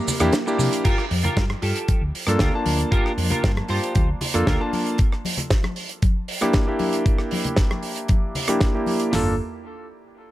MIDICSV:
0, 0, Header, 1, 8, 480
1, 0, Start_track
1, 0, Tempo, 517241
1, 793, Time_signature, 4, 2, 24, 8
1, 9570, End_track
2, 0, Start_track
2, 0, Title_t, "Clean electric guitar"
2, 0, Program_c, 0, 27
2, 783, Note_on_c, 0, 65, 109
2, 788, Note_on_c, 0, 67, 99
2, 794, Note_on_c, 0, 70, 108
2, 969, Note_off_c, 0, 65, 0
2, 972, Note_off_c, 0, 67, 0
2, 973, Note_off_c, 0, 70, 0
2, 1146, Note_on_c, 0, 65, 85
2, 1151, Note_on_c, 0, 67, 77
2, 1156, Note_on_c, 0, 70, 93
2, 1330, Note_off_c, 0, 65, 0
2, 1332, Note_off_c, 0, 67, 0
2, 1335, Note_off_c, 0, 70, 0
2, 1504, Note_on_c, 0, 65, 83
2, 1512, Note_on_c, 0, 67, 69
2, 1513, Note_on_c, 0, 69, 94
2, 1870, Note_off_c, 0, 65, 0
2, 1872, Note_off_c, 0, 67, 0
2, 1874, Note_off_c, 0, 69, 0
2, 2224, Note_on_c, 0, 65, 84
2, 2227, Note_on_c, 0, 67, 73
2, 2237, Note_on_c, 0, 70, 80
2, 2350, Note_off_c, 0, 65, 0
2, 2352, Note_off_c, 0, 67, 0
2, 2354, Note_off_c, 0, 70, 0
2, 2704, Note_on_c, 0, 65, 108
2, 2708, Note_on_c, 0, 67, 99
2, 2713, Note_on_c, 0, 70, 119
2, 2889, Note_off_c, 0, 65, 0
2, 2891, Note_off_c, 0, 67, 0
2, 2894, Note_off_c, 0, 70, 0
2, 3064, Note_on_c, 0, 65, 83
2, 3068, Note_on_c, 0, 67, 74
2, 3075, Note_on_c, 0, 70, 77
2, 3249, Note_off_c, 0, 65, 0
2, 3251, Note_off_c, 0, 67, 0
2, 3253, Note_off_c, 0, 70, 0
2, 3424, Note_on_c, 0, 65, 86
2, 3429, Note_on_c, 0, 67, 77
2, 3433, Note_on_c, 0, 72, 96
2, 3790, Note_off_c, 0, 65, 0
2, 3792, Note_off_c, 0, 67, 0
2, 3795, Note_off_c, 0, 72, 0
2, 4146, Note_on_c, 0, 65, 85
2, 4154, Note_on_c, 0, 67, 66
2, 4156, Note_on_c, 0, 70, 92
2, 4272, Note_off_c, 0, 65, 0
2, 4273, Note_off_c, 0, 67, 0
2, 4276, Note_off_c, 0, 70, 0
2, 9570, End_track
3, 0, Start_track
3, 0, Title_t, "String machine"
3, 0, Program_c, 1, 50
3, 0, Note_on_c, 1, 58, 81
3, 0, Note_on_c, 1, 70, 85
3, 804, Note_off_c, 1, 58, 0
3, 804, Note_off_c, 1, 70, 0
3, 9570, End_track
4, 0, Start_track
4, 0, Title_t, "Electric grand piano"
4, 0, Program_c, 2, 2
4, 0, Note_on_c, 2, 58, 91
4, 0, Note_on_c, 2, 62, 83
4, 0, Note_on_c, 2, 64, 83
4, 0, Note_on_c, 2, 67, 101
4, 163, Note_off_c, 2, 58, 0
4, 166, Note_off_c, 2, 62, 0
4, 170, Note_off_c, 2, 64, 0
4, 173, Note_off_c, 2, 67, 0
4, 191, Note_on_c, 2, 58, 99
4, 196, Note_on_c, 2, 62, 92
4, 196, Note_on_c, 2, 64, 90
4, 199, Note_on_c, 2, 67, 113
4, 293, Note_off_c, 2, 58, 0
4, 295, Note_off_c, 2, 62, 0
4, 295, Note_off_c, 2, 64, 0
4, 296, Note_off_c, 2, 67, 0
4, 437, Note_on_c, 2, 58, 88
4, 441, Note_on_c, 2, 62, 81
4, 442, Note_on_c, 2, 64, 81
4, 446, Note_on_c, 2, 67, 99
4, 781, Note_off_c, 2, 58, 0
4, 783, Note_off_c, 2, 62, 0
4, 783, Note_off_c, 2, 64, 0
4, 785, Note_off_c, 2, 67, 0
4, 2110, Note_on_c, 2, 58, 88
4, 2112, Note_on_c, 2, 62, 82
4, 2118, Note_on_c, 2, 65, 80
4, 2122, Note_on_c, 2, 69, 99
4, 2323, Note_off_c, 2, 58, 0
4, 2324, Note_off_c, 2, 62, 0
4, 2327, Note_off_c, 2, 65, 0
4, 2329, Note_off_c, 2, 69, 0
4, 2352, Note_on_c, 2, 58, 85
4, 2357, Note_on_c, 2, 62, 79
4, 2364, Note_on_c, 2, 65, 78
4, 2369, Note_on_c, 2, 81, 93
4, 4004, Note_off_c, 2, 58, 0
4, 4007, Note_off_c, 2, 62, 0
4, 4010, Note_off_c, 2, 65, 0
4, 4013, Note_off_c, 2, 81, 0
4, 4029, Note_on_c, 2, 58, 90
4, 4032, Note_on_c, 2, 62, 84
4, 4034, Note_on_c, 2, 65, 84
4, 4037, Note_on_c, 2, 69, 99
4, 4243, Note_off_c, 2, 58, 0
4, 4245, Note_off_c, 2, 62, 0
4, 4246, Note_off_c, 2, 65, 0
4, 4247, Note_off_c, 2, 69, 0
4, 4269, Note_on_c, 2, 58, 86
4, 4273, Note_on_c, 2, 62, 81
4, 4278, Note_on_c, 2, 65, 81
4, 4279, Note_on_c, 2, 81, 97
4, 4617, Note_off_c, 2, 58, 0
4, 4619, Note_off_c, 2, 62, 0
4, 4621, Note_off_c, 2, 65, 0
4, 4622, Note_off_c, 2, 81, 0
4, 5950, Note_on_c, 2, 58, 93
4, 5952, Note_on_c, 2, 62, 86
4, 5955, Note_on_c, 2, 64, 83
4, 5959, Note_on_c, 2, 67, 102
4, 6163, Note_off_c, 2, 58, 0
4, 6165, Note_off_c, 2, 62, 0
4, 6166, Note_off_c, 2, 64, 0
4, 6168, Note_off_c, 2, 67, 0
4, 6187, Note_on_c, 2, 58, 86
4, 6192, Note_on_c, 2, 62, 81
4, 6197, Note_on_c, 2, 64, 80
4, 6203, Note_on_c, 2, 67, 93
4, 7842, Note_off_c, 2, 58, 0
4, 7844, Note_off_c, 2, 62, 0
4, 7847, Note_off_c, 2, 64, 0
4, 7850, Note_off_c, 2, 67, 0
4, 7872, Note_on_c, 2, 58, 90
4, 7877, Note_on_c, 2, 62, 82
4, 7878, Note_on_c, 2, 64, 81
4, 7881, Note_on_c, 2, 67, 99
4, 8085, Note_off_c, 2, 58, 0
4, 8087, Note_off_c, 2, 62, 0
4, 8087, Note_off_c, 2, 64, 0
4, 8089, Note_off_c, 2, 67, 0
4, 8112, Note_on_c, 2, 58, 84
4, 8115, Note_on_c, 2, 62, 78
4, 8117, Note_on_c, 2, 64, 78
4, 8120, Note_on_c, 2, 67, 94
4, 8449, Note_off_c, 2, 58, 0
4, 8457, Note_off_c, 2, 62, 0
4, 8460, Note_off_c, 2, 64, 0
4, 8462, Note_off_c, 2, 67, 0
4, 8463, Note_on_c, 2, 58, 84
4, 8471, Note_on_c, 2, 62, 78
4, 8480, Note_on_c, 2, 65, 79
4, 8491, Note_on_c, 2, 69, 94
4, 8647, Note_off_c, 2, 58, 0
4, 8651, Note_off_c, 2, 62, 0
4, 8656, Note_off_c, 2, 65, 0
4, 8662, Note_off_c, 2, 69, 0
4, 9570, End_track
5, 0, Start_track
5, 0, Title_t, "Fingered electric bass"
5, 0, Program_c, 3, 33
5, 190, Note_on_c, 3, 40, 104
5, 267, Note_off_c, 3, 40, 0
5, 546, Note_on_c, 3, 48, 88
5, 626, Note_off_c, 3, 48, 0
5, 790, Note_on_c, 3, 31, 96
5, 868, Note_off_c, 3, 31, 0
5, 1030, Note_on_c, 3, 41, 89
5, 1183, Note_off_c, 3, 41, 0
5, 1269, Note_on_c, 3, 43, 76
5, 1423, Note_off_c, 3, 43, 0
5, 1509, Note_on_c, 3, 43, 94
5, 1587, Note_off_c, 3, 43, 0
5, 1868, Note_on_c, 3, 38, 85
5, 1946, Note_off_c, 3, 38, 0
5, 2107, Note_on_c, 3, 43, 79
5, 2186, Note_off_c, 3, 43, 0
5, 2228, Note_on_c, 3, 38, 96
5, 2307, Note_off_c, 3, 38, 0
5, 2468, Note_on_c, 3, 38, 85
5, 2622, Note_off_c, 3, 38, 0
5, 2710, Note_on_c, 3, 31, 94
5, 2788, Note_off_c, 3, 31, 0
5, 2946, Note_on_c, 3, 41, 89
5, 3068, Note_off_c, 3, 41, 0
5, 3188, Note_on_c, 3, 43, 78
5, 3342, Note_off_c, 3, 43, 0
5, 3429, Note_on_c, 3, 43, 94
5, 3507, Note_off_c, 3, 43, 0
5, 3673, Note_on_c, 3, 38, 95
5, 3824, Note_off_c, 3, 38, 0
5, 4035, Note_on_c, 3, 41, 95
5, 4109, Note_off_c, 3, 41, 0
5, 4150, Note_on_c, 3, 38, 86
5, 4228, Note_off_c, 3, 38, 0
5, 8478, Note_on_c, 3, 31, 94
5, 8699, Note_off_c, 3, 31, 0
5, 9570, End_track
6, 0, Start_track
6, 0, Title_t, "Muted clean electric guitar strokes"
6, 428, Note_on_c, 9, 29, 91
6, 521, Note_off_c, 9, 29, 0
6, 542, Note_on_c, 9, 29, 114
6, 635, Note_off_c, 9, 29, 0
6, 664, Note_on_c, 9, 29, 33
6, 757, Note_off_c, 9, 29, 0
6, 2467, Note_on_c, 9, 29, 31
6, 2560, Note_off_c, 9, 29, 0
6, 4390, Note_on_c, 9, 29, 33
6, 4482, Note_off_c, 9, 29, 0
6, 9570, End_track
7, 0, Start_track
7, 0, Title_t, "Muted fingered electric bass strokes"
7, 1750, Note_on_c, 9, 29, 40
7, 1842, Note_off_c, 9, 29, 0
7, 3074, Note_on_c, 9, 29, 42
7, 3166, Note_off_c, 9, 29, 0
7, 9570, End_track
8, 0, Start_track
8, 0, Title_t, "Drums"
8, 71, Note_on_c, 9, 46, 102
8, 72, Note_on_c, 9, 64, 93
8, 74, Note_on_c, 9, 82, 93
8, 164, Note_off_c, 9, 46, 0
8, 165, Note_off_c, 9, 64, 0
8, 167, Note_off_c, 9, 82, 0
8, 183, Note_on_c, 9, 42, 84
8, 186, Note_on_c, 9, 82, 51
8, 189, Note_on_c, 9, 37, 77
8, 199, Note_on_c, 9, 63, 61
8, 276, Note_off_c, 9, 42, 0
8, 278, Note_off_c, 9, 82, 0
8, 282, Note_off_c, 9, 37, 0
8, 292, Note_off_c, 9, 63, 0
8, 302, Note_on_c, 9, 42, 69
8, 309, Note_on_c, 9, 38, 127
8, 315, Note_on_c, 9, 82, 66
8, 394, Note_off_c, 9, 42, 0
8, 402, Note_off_c, 9, 38, 0
8, 408, Note_off_c, 9, 82, 0
8, 441, Note_on_c, 9, 82, 54
8, 534, Note_off_c, 9, 82, 0
8, 552, Note_on_c, 9, 63, 82
8, 553, Note_on_c, 9, 82, 83
8, 557, Note_on_c, 9, 46, 91
8, 645, Note_off_c, 9, 63, 0
8, 646, Note_off_c, 9, 82, 0
8, 649, Note_off_c, 9, 46, 0
8, 674, Note_on_c, 9, 42, 82
8, 678, Note_on_c, 9, 82, 51
8, 767, Note_off_c, 9, 42, 0
8, 771, Note_off_c, 9, 82, 0
8, 786, Note_on_c, 9, 42, 61
8, 790, Note_on_c, 9, 36, 118
8, 791, Note_on_c, 9, 49, 93
8, 879, Note_off_c, 9, 42, 0
8, 883, Note_off_c, 9, 36, 0
8, 884, Note_off_c, 9, 49, 0
8, 911, Note_on_c, 9, 37, 60
8, 1004, Note_off_c, 9, 37, 0
8, 1028, Note_on_c, 9, 46, 105
8, 1043, Note_on_c, 9, 63, 88
8, 1121, Note_off_c, 9, 46, 0
8, 1135, Note_off_c, 9, 63, 0
8, 1146, Note_on_c, 9, 42, 72
8, 1153, Note_on_c, 9, 64, 92
8, 1239, Note_off_c, 9, 42, 0
8, 1246, Note_off_c, 9, 64, 0
8, 1269, Note_on_c, 9, 36, 113
8, 1269, Note_on_c, 9, 42, 62
8, 1273, Note_on_c, 9, 38, 110
8, 1361, Note_off_c, 9, 42, 0
8, 1362, Note_off_c, 9, 36, 0
8, 1366, Note_off_c, 9, 38, 0
8, 1391, Note_on_c, 9, 37, 81
8, 1391, Note_on_c, 9, 63, 62
8, 1484, Note_off_c, 9, 37, 0
8, 1484, Note_off_c, 9, 63, 0
8, 1506, Note_on_c, 9, 46, 96
8, 1598, Note_off_c, 9, 46, 0
8, 1630, Note_on_c, 9, 42, 77
8, 1723, Note_off_c, 9, 42, 0
8, 1747, Note_on_c, 9, 42, 62
8, 1750, Note_on_c, 9, 36, 117
8, 1750, Note_on_c, 9, 63, 88
8, 1840, Note_off_c, 9, 42, 0
8, 1843, Note_off_c, 9, 36, 0
8, 1843, Note_off_c, 9, 63, 0
8, 1995, Note_on_c, 9, 46, 101
8, 2087, Note_off_c, 9, 46, 0
8, 2103, Note_on_c, 9, 37, 76
8, 2111, Note_on_c, 9, 42, 75
8, 2115, Note_on_c, 9, 63, 60
8, 2196, Note_off_c, 9, 37, 0
8, 2203, Note_off_c, 9, 42, 0
8, 2208, Note_off_c, 9, 63, 0
8, 2220, Note_on_c, 9, 38, 120
8, 2229, Note_on_c, 9, 36, 115
8, 2229, Note_on_c, 9, 42, 66
8, 2313, Note_off_c, 9, 38, 0
8, 2321, Note_off_c, 9, 42, 0
8, 2322, Note_off_c, 9, 36, 0
8, 2464, Note_on_c, 9, 63, 87
8, 2465, Note_on_c, 9, 46, 102
8, 2557, Note_off_c, 9, 63, 0
8, 2558, Note_off_c, 9, 46, 0
8, 2584, Note_on_c, 9, 42, 70
8, 2677, Note_off_c, 9, 42, 0
8, 2709, Note_on_c, 9, 36, 125
8, 2713, Note_on_c, 9, 42, 63
8, 2802, Note_off_c, 9, 36, 0
8, 2805, Note_off_c, 9, 42, 0
8, 2840, Note_on_c, 9, 37, 60
8, 2932, Note_off_c, 9, 37, 0
8, 2949, Note_on_c, 9, 46, 114
8, 2955, Note_on_c, 9, 63, 84
8, 3042, Note_off_c, 9, 46, 0
8, 3048, Note_off_c, 9, 63, 0
8, 3069, Note_on_c, 9, 64, 92
8, 3078, Note_on_c, 9, 42, 78
8, 3162, Note_off_c, 9, 64, 0
8, 3170, Note_off_c, 9, 42, 0
8, 3189, Note_on_c, 9, 42, 63
8, 3190, Note_on_c, 9, 36, 122
8, 3191, Note_on_c, 9, 38, 122
8, 3282, Note_off_c, 9, 42, 0
8, 3283, Note_off_c, 9, 36, 0
8, 3284, Note_off_c, 9, 38, 0
8, 3311, Note_on_c, 9, 63, 66
8, 3316, Note_on_c, 9, 37, 78
8, 3404, Note_off_c, 9, 63, 0
8, 3409, Note_off_c, 9, 37, 0
8, 3418, Note_on_c, 9, 46, 95
8, 3511, Note_off_c, 9, 46, 0
8, 3560, Note_on_c, 9, 42, 68
8, 3652, Note_off_c, 9, 42, 0
8, 3664, Note_on_c, 9, 42, 61
8, 3671, Note_on_c, 9, 36, 124
8, 3675, Note_on_c, 9, 63, 90
8, 3757, Note_off_c, 9, 42, 0
8, 3764, Note_off_c, 9, 36, 0
8, 3767, Note_off_c, 9, 63, 0
8, 3906, Note_on_c, 9, 64, 93
8, 3908, Note_on_c, 9, 46, 120
8, 3999, Note_off_c, 9, 64, 0
8, 4001, Note_off_c, 9, 46, 0
8, 4027, Note_on_c, 9, 63, 64
8, 4028, Note_on_c, 9, 37, 69
8, 4031, Note_on_c, 9, 42, 73
8, 4120, Note_off_c, 9, 63, 0
8, 4121, Note_off_c, 9, 37, 0
8, 4124, Note_off_c, 9, 42, 0
8, 4149, Note_on_c, 9, 38, 127
8, 4150, Note_on_c, 9, 36, 119
8, 4157, Note_on_c, 9, 42, 65
8, 4242, Note_off_c, 9, 38, 0
8, 4243, Note_off_c, 9, 36, 0
8, 4250, Note_off_c, 9, 42, 0
8, 4389, Note_on_c, 9, 63, 92
8, 4392, Note_on_c, 9, 46, 98
8, 4482, Note_off_c, 9, 63, 0
8, 4485, Note_off_c, 9, 46, 0
8, 4514, Note_on_c, 9, 42, 76
8, 4607, Note_off_c, 9, 42, 0
8, 4622, Note_on_c, 9, 42, 56
8, 4632, Note_on_c, 9, 36, 125
8, 4715, Note_off_c, 9, 42, 0
8, 4724, Note_off_c, 9, 36, 0
8, 4756, Note_on_c, 9, 37, 55
8, 4849, Note_off_c, 9, 37, 0
8, 4870, Note_on_c, 9, 63, 85
8, 4876, Note_on_c, 9, 46, 113
8, 4963, Note_off_c, 9, 63, 0
8, 4969, Note_off_c, 9, 46, 0
8, 4987, Note_on_c, 9, 64, 87
8, 4990, Note_on_c, 9, 42, 75
8, 5079, Note_off_c, 9, 64, 0
8, 5083, Note_off_c, 9, 42, 0
8, 5108, Note_on_c, 9, 38, 122
8, 5109, Note_on_c, 9, 42, 59
8, 5112, Note_on_c, 9, 36, 124
8, 5201, Note_off_c, 9, 38, 0
8, 5202, Note_off_c, 9, 42, 0
8, 5205, Note_off_c, 9, 36, 0
8, 5226, Note_on_c, 9, 63, 67
8, 5235, Note_on_c, 9, 37, 82
8, 5319, Note_off_c, 9, 63, 0
8, 5328, Note_off_c, 9, 37, 0
8, 5345, Note_on_c, 9, 46, 101
8, 5438, Note_off_c, 9, 46, 0
8, 5468, Note_on_c, 9, 42, 68
8, 5560, Note_off_c, 9, 42, 0
8, 5589, Note_on_c, 9, 42, 59
8, 5590, Note_on_c, 9, 63, 97
8, 5592, Note_on_c, 9, 36, 124
8, 5682, Note_off_c, 9, 42, 0
8, 5683, Note_off_c, 9, 63, 0
8, 5685, Note_off_c, 9, 36, 0
8, 5830, Note_on_c, 9, 46, 116
8, 5922, Note_off_c, 9, 46, 0
8, 5952, Note_on_c, 9, 42, 72
8, 5956, Note_on_c, 9, 37, 83
8, 5960, Note_on_c, 9, 63, 63
8, 6045, Note_off_c, 9, 42, 0
8, 6049, Note_off_c, 9, 37, 0
8, 6052, Note_off_c, 9, 63, 0
8, 6062, Note_on_c, 9, 42, 62
8, 6066, Note_on_c, 9, 38, 118
8, 6071, Note_on_c, 9, 36, 123
8, 6155, Note_off_c, 9, 42, 0
8, 6158, Note_off_c, 9, 38, 0
8, 6164, Note_off_c, 9, 36, 0
8, 6302, Note_on_c, 9, 46, 88
8, 6309, Note_on_c, 9, 63, 98
8, 6395, Note_off_c, 9, 46, 0
8, 6401, Note_off_c, 9, 63, 0
8, 6428, Note_on_c, 9, 42, 76
8, 6520, Note_off_c, 9, 42, 0
8, 6550, Note_on_c, 9, 36, 122
8, 6550, Note_on_c, 9, 42, 58
8, 6642, Note_off_c, 9, 42, 0
8, 6643, Note_off_c, 9, 36, 0
8, 6667, Note_on_c, 9, 37, 57
8, 6760, Note_off_c, 9, 37, 0
8, 6784, Note_on_c, 9, 46, 114
8, 6798, Note_on_c, 9, 63, 96
8, 6877, Note_off_c, 9, 46, 0
8, 6890, Note_off_c, 9, 63, 0
8, 6909, Note_on_c, 9, 42, 76
8, 6915, Note_on_c, 9, 64, 84
8, 7002, Note_off_c, 9, 42, 0
8, 7008, Note_off_c, 9, 64, 0
8, 7020, Note_on_c, 9, 38, 107
8, 7029, Note_on_c, 9, 42, 63
8, 7030, Note_on_c, 9, 36, 118
8, 7113, Note_off_c, 9, 38, 0
8, 7121, Note_off_c, 9, 42, 0
8, 7123, Note_off_c, 9, 36, 0
8, 7154, Note_on_c, 9, 37, 77
8, 7157, Note_on_c, 9, 63, 69
8, 7247, Note_off_c, 9, 37, 0
8, 7250, Note_off_c, 9, 63, 0
8, 7262, Note_on_c, 9, 46, 96
8, 7354, Note_off_c, 9, 46, 0
8, 7386, Note_on_c, 9, 42, 72
8, 7479, Note_off_c, 9, 42, 0
8, 7502, Note_on_c, 9, 42, 57
8, 7510, Note_on_c, 9, 36, 122
8, 7514, Note_on_c, 9, 63, 99
8, 7594, Note_off_c, 9, 42, 0
8, 7603, Note_off_c, 9, 36, 0
8, 7607, Note_off_c, 9, 63, 0
8, 7749, Note_on_c, 9, 64, 75
8, 7752, Note_on_c, 9, 46, 109
8, 7842, Note_off_c, 9, 64, 0
8, 7844, Note_off_c, 9, 46, 0
8, 7865, Note_on_c, 9, 42, 69
8, 7868, Note_on_c, 9, 37, 77
8, 7872, Note_on_c, 9, 63, 69
8, 7958, Note_off_c, 9, 42, 0
8, 7961, Note_off_c, 9, 37, 0
8, 7964, Note_off_c, 9, 63, 0
8, 7986, Note_on_c, 9, 38, 119
8, 7990, Note_on_c, 9, 42, 59
8, 7991, Note_on_c, 9, 36, 121
8, 8079, Note_off_c, 9, 38, 0
8, 8083, Note_off_c, 9, 42, 0
8, 8084, Note_off_c, 9, 36, 0
8, 8226, Note_on_c, 9, 63, 85
8, 8233, Note_on_c, 9, 46, 91
8, 8319, Note_off_c, 9, 63, 0
8, 8326, Note_off_c, 9, 46, 0
8, 8347, Note_on_c, 9, 42, 65
8, 8440, Note_off_c, 9, 42, 0
8, 8472, Note_on_c, 9, 38, 103
8, 8472, Note_on_c, 9, 43, 104
8, 8472, Note_on_c, 9, 46, 87
8, 8565, Note_off_c, 9, 38, 0
8, 8565, Note_off_c, 9, 43, 0
8, 8565, Note_off_c, 9, 46, 0
8, 9570, End_track
0, 0, End_of_file